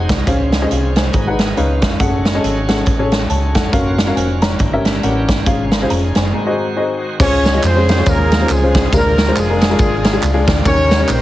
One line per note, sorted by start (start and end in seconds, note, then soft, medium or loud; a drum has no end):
0.00 0.27 F#3 medium
0.00 1.12 C4 medium
0.00 0.12 D#4 medium
0.00 0.27 D#4 medium
0.00 0.12 G#4 medium
0.00 1.54 G#4 medium
0.00 0.12 C5 medium
0.00 0.12 F#5 medium
0.09 0.24 C2 medium
0.09 kick medium
0.09 snare loud
0.09 closed hi-hat medium
0.27 0.64 C#2 medium
0.27 0.92 C#3 medium
0.27 1.13 F3 medium
0.27 1.13 C#4 medium
0.27 0.49 C#4 medium
0.27 0.49 G#4 medium
0.27 0.49 C5 medium
0.27 0.49 F5 medium
0.27 kick loud
0.27 closed hi-hat medium
0.52 snare medium
0.52 closed hi-hat medium
0.62 0.80 C#4 medium
0.62 0.70 G#4 medium
0.62 0.71 C5 medium
0.62 0.71 D#5 medium
0.71 1.07 C2 medium
0.71 0.95 G#4 soft
0.71 closed hi-hat medium
0.96 1.38 C5 soft
0.96 1.37 G#5 medium
0.96 snare loud
0.96 closed hi-hat medium
1.13 1.51 G#1 medium
1.13 1.54 G#2 medium
1.13 1.56 F#3 medium
1.13 1.55 B3 medium
1.13 1.56 D#4 medium
1.13 kick loud
1.13 closed hi-hat medium
1.27 1.46 D#4 medium
1.27 1.46 G#4 medium
1.27 1.46 B4 medium
1.27 1.46 F#5 medium
1.39 snare medium
1.39 closed hi-hat medium
1.56 1.79 C#2 medium
1.56 1.97 C#3 medium
1.56 1.99 D#3 medium
1.56 2.00 B3 medium
1.56 6.29 C#4 medium
1.56 1.85 D#4 medium
1.56 1.99 F4 medium
1.56 1.85 B4 medium
1.56 1.85 C#5 medium
1.56 1.85 F5 medium
1.56 closed hi-hat medium
1.82 kick medium
1.82 snare loud
1.82 closed hi-hat medium
2.00 2.37 F#1 loud
2.00 3.72 F#3 medium
2.00 3.72 A3 medium
2.00 2.22 C#4 medium
2.00 3.72 G#4 medium
2.00 2.22 G#4 medium
2.00 2.22 A4 medium
2.00 2.22 F#5 medium
2.00 kick loud
2.00 closed hi-hat medium
2.25 snare medium
2.25 closed hi-hat medium
2.35 2.53 C#4 medium
2.35 2.53 G#4 medium
2.35 2.53 A4 medium
2.35 2.53 D#5 medium
2.44 2.80 G#1 medium
2.44 closed hi-hat medium
2.68 2.84 C#4 medium
2.68 2.84 G#4 medium
2.68 2.84 A4 medium
2.68 2.84 F#5 medium
2.68 snare loud
2.68 closed hi-hat medium
2.86 3.24 A1 loud
2.86 kick loud
2.86 closed hi-hat medium
2.99 3.18 C#4 medium
2.99 3.19 G#4 medium
2.99 3.18 A4 medium
2.99 3.19 C#5 medium
3.12 snare loud
3.12 closed hi-hat medium
3.30 3.52 C#2 medium
3.30 3.54 C#5 medium
3.30 3.54 A5 medium
3.30 closed hi-hat medium
3.55 3.97 A4 medium
3.55 3.97 F#5 medium
3.55 kick medium
3.55 snare loud
3.55 closed hi-hat medium
3.72 4.10 F#1 medium
3.72 5.44 A#3 medium
3.72 3.95 C#4 medium
3.72 4.59 F4 medium
3.72 3.95 F#4 medium
3.72 4.59 F#4 medium
3.72 3.95 A#4 medium
3.72 3.95 F5 medium
3.72 kick loud
3.72 closed hi-hat medium
3.98 snare medium
3.98 closed hi-hat medium
4.07 4.25 C#4 medium
4.07 4.25 F#4 medium
4.07 4.26 A#4 medium
4.07 4.16 F5 medium
4.16 4.53 F1 medium
4.16 4.41 C5 soft
4.16 4.41 G#5 medium
4.16 closed hi-hat medium
4.42 4.84 C#5 medium
4.42 4.83 A#5 medium
4.42 snare medium
4.42 closed hi-hat medium
4.59 4.97 G1 medium
4.59 5.25 G2 medium
4.59 5.46 E3 medium
4.59 5.46 G4 medium
4.59 kick medium
4.59 closed hi-hat medium
4.73 4.92 C#4 medium
4.73 4.92 G4 medium
4.73 4.92 A#4 medium
4.73 4.92 E5 medium
4.85 snare medium
4.85 closed hi-hat medium
5.03 5.25 A1 medium
5.03 5.31 C#4 medium
5.03 5.32 G4 medium
5.03 5.32 A#4 medium
5.03 5.31 F#5 medium
5.03 closed hi-hat medium
5.28 kick medium
5.28 snare loud
5.28 closed hi-hat medium
5.46 5.83 G#1 loud
5.46 6.12 G#2 medium
5.46 6.33 F3 medium
5.46 7.18 G#3 medium
5.46 5.69 C#4 medium
5.46 5.69 F4 medium
5.46 5.69 G#4 medium
5.46 6.33 G#4 medium
5.46 5.68 F5 medium
5.46 kick loud
5.46 closed hi-hat medium
5.72 snare medium
5.72 closed hi-hat medium
5.82 6.00 C#4 medium
5.82 6.00 F4 medium
5.82 6.00 G#4 medium
5.82 5.91 C5 medium
5.90 6.12 F1 medium
5.90 6.15 C#5 medium
5.90 6.14 A#5 medium
5.90 closed hi-hat medium
6.15 6.31 F#1 medium
6.15 6.57 C5 soft
6.15 6.57 G#5 medium
6.15 snare medium
6.15 closed hi-hat medium
6.34 6.98 G#2 medium
6.34 7.19 D#3 medium
6.34 7.19 C4 medium
6.34 7.19 F#4 medium
6.46 6.66 C4 medium
6.46 6.65 F#4 medium
6.46 6.65 G#4 medium
6.46 6.65 D#5 medium
6.77 7.05 C4 medium
6.77 7.05 F#4 medium
6.77 7.05 G#4 medium
6.77 7.05 D#5 medium
7.20 7.57 C#2 loud
7.20 7.85 C#3 medium
7.20 8.92 C#3 medium
7.20 8.92 F3 medium
7.20 7.42 G#3 medium
7.20 8.92 G#3 medium
7.20 7.42 C#4 medium
7.20 7.61 C#4 loud
7.20 7.62 F4 medium
7.20 7.42 F4 medium
7.20 7.62 G#4 medium
7.20 10.63 G#4 medium
7.20 7.42 C5 medium
7.20 7.61 C#5 loud
7.20 kick loud
7.20 crash loud
7.20 tambourine medium
7.45 snare medium
7.45 ride medium
7.45 tambourine medium
7.54 7.65 G#3 medium
7.54 7.65 C#4 medium
7.54 7.65 F4 medium
7.54 7.65 D#5 medium
7.63 8.00 F2 medium
7.63 8.07 C4 medium
7.63 8.05 F4 medium
7.63 8.46 G#4 medium
7.63 8.07 C5 medium
7.63 clap medium
7.63 ride medium
7.63 tambourine medium
7.76 7.90 G#3 medium
7.76 7.90 C#4 medium
7.76 7.90 F4 medium
7.76 7.90 C#5 medium
7.89 snare loud
7.89 ride medium
7.89 tambourine soft
7.98 8.23 G#3 medium
7.98 8.23 C#4 medium
7.98 8.23 F4 medium
7.98 8.23 C#5 medium
8.06 8.43 D#2 medium
8.06 8.50 A#3 medium
8.06 8.49 F4 medium
8.06 8.50 A#4 loud
8.06 kick loud
8.06 ride medium
8.06 tambourine medium
8.32 snare loud
8.32 ride medium
8.32 tambourine medium
8.41 8.51 G#3 medium
8.41 8.52 C#4 medium
8.41 8.52 F4 medium
8.41 8.52 C5 medium
8.49 8.86 C#2 medium
8.49 8.93 G#3 medium
8.49 8.90 C4 medium
8.49 8.90 F4 medium
8.49 8.93 G#4 medium
8.49 clap loud
8.49 ride medium
8.49 tambourine loud
8.63 8.82 G#3 medium
8.63 8.82 C#4 medium
8.63 8.82 F4 medium
8.63 8.82 C5 medium
8.74 kick medium
8.74 snare loud
8.74 ride medium
8.74 tambourine soft
8.93 9.30 D2 loud
8.93 9.58 D3 medium
8.93 10.64 F3 medium
8.93 9.15 G#3 medium
8.93 11.22 A#3 medium
8.93 9.34 A#3 medium
8.93 10.64 D4 medium
8.93 9.15 D4 medium
8.93 9.15 F4 medium
8.93 9.37 F4 medium
8.93 9.15 A#4 medium
8.93 9.34 A#4 medium
8.93 kick loud
8.93 ride medium
8.93 tambourine medium
9.18 snare loud
9.18 ride medium
9.18 tambourine medium
9.28 9.38 G#3 medium
9.28 9.38 D4 medium
9.28 9.38 F4 medium
9.28 9.38 C5 medium
9.36 9.73 F1 medium
9.36 10.45 G#3 medium
9.36 10.45 F4 medium
9.36 10.45 G#4 medium
9.36 clap medium
9.36 ride medium
9.36 tambourine medium
9.49 9.63 G#3 medium
9.49 9.63 D4 medium
9.49 9.63 F4 medium
9.49 9.63 A#4 medium
9.61 snare loud
9.61 ride medium
9.61 tambourine soft
9.70 9.95 G#3 medium
9.70 9.95 D4 medium
9.70 9.95 F4 medium
9.70 9.95 A#4 medium
9.79 10.16 G#1 loud
9.79 kick loud
9.79 ride medium
9.79 tambourine medium
10.04 snare loud
10.04 ride medium
10.04 tambourine medium
10.13 10.24 G#3 medium
10.13 10.24 D4 medium
10.13 10.24 F4 medium
10.13 10.24 G#4 medium
10.22 10.44 C#2 medium
10.22 10.62 F5 medium
10.22 clap loud
10.22 ride medium
10.22 tambourine loud
10.33 10.53 G#3 medium
10.33 10.54 D4 medium
10.33 10.53 F4 medium
10.33 10.54 G#4 loud
10.47 10.63 D2 medium
10.47 kick medium
10.47 snare loud
10.47 ride medium
10.47 tambourine soft
10.65 11.02 D#2 loud
10.65 11.22 D#3 medium
10.65 10.87 G3 medium
10.65 10.87 C#4 medium
10.65 11.22 C#4 medium
10.65 11.06 C#4 loud
10.65 10.87 D#4 medium
10.65 11.22 G4 medium
10.65 11.08 G4 medium
10.65 10.87 A#4 medium
10.65 11.22 A#4 medium
10.65 11.06 C#5 loud
10.65 kick loud
10.65 ride medium
10.65 tambourine medium
10.91 snare loud
10.91 ride medium
10.91 tambourine medium
11.00 11.11 G3 medium
11.00 11.11 C#4 medium
11.00 11.11 D#4 medium
11.00 11.11 C#5 medium
11.08 11.22 A#1 loud
11.08 11.22 C4 medium
11.08 11.22 G4 medium
11.08 11.22 C5 medium
11.08 clap medium
11.08 ride medium
11.08 tambourine medium